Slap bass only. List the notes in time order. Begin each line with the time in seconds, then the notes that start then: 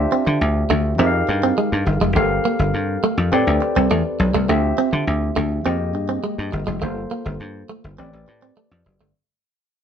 0.27 D3
0.41 D2
0.70 D2
0.99 F2
1.28 G2
1.72 G2
1.86 G1
2.01 F1
2.16 G1
2.59 G1
2.74 G2
3.18 F2
3.32 A2
3.47 D2
3.76 C2
3.90 E2
4.19 B1
4.34 C2
4.49 D2
4.93 D3
5.07 D2
5.36 D2
5.66 F2
5.95 G2
6.38 G2
6.53 G1
6.67 F1
6.82 G1
7.26 G1
7.40 G2
7.84 G1
7.99 A1
8.13 A1
8.28 A2
8.71 F2
8.86 F#1
9.00 G1